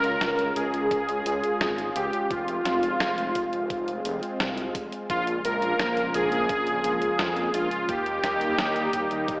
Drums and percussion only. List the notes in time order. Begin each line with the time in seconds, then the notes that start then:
0.04 closed hi-hat
0.21 snare, closed hi-hat
0.39 closed hi-hat
0.56 closed hi-hat
0.74 closed hi-hat
0.91 kick, closed hi-hat
1.09 closed hi-hat
1.26 closed hi-hat
1.44 closed hi-hat
1.61 snare, closed hi-hat
1.78 closed hi-hat
1.96 closed hi-hat
2.13 closed hi-hat
2.31 kick, closed hi-hat
2.48 closed hi-hat
2.65 snare, closed hi-hat
2.83 closed hi-hat
3.00 snare, closed hi-hat
3.18 closed hi-hat
3.35 kick, closed hi-hat
3.53 closed hi-hat
3.70 kick, closed hi-hat
3.88 closed hi-hat
4.05 closed hi-hat
4.23 closed hi-hat
4.40 snare, closed hi-hat
4.58 closed hi-hat
4.75 kick, closed hi-hat
4.92 closed hi-hat
5.10 kick, closed hi-hat
5.27 closed hi-hat
5.45 closed hi-hat
5.62 closed hi-hat
5.79 snare, closed hi-hat
5.97 closed hi-hat
6.14 closed hi-hat
6.32 closed hi-hat
6.49 kick, closed hi-hat
6.67 closed hi-hat
6.84 closed hi-hat
7.02 closed hi-hat
7.19 snare, closed hi-hat
7.37 closed hi-hat
7.54 closed hi-hat
7.71 closed hi-hat
7.89 kick, closed hi-hat
8.06 closed hi-hat
8.24 snare, closed hi-hat
8.41 closed hi-hat
8.59 snare, closed hi-hat
8.76 closed hi-hat
8.93 kick, closed hi-hat
9.11 closed hi-hat
9.28 kick, closed hi-hat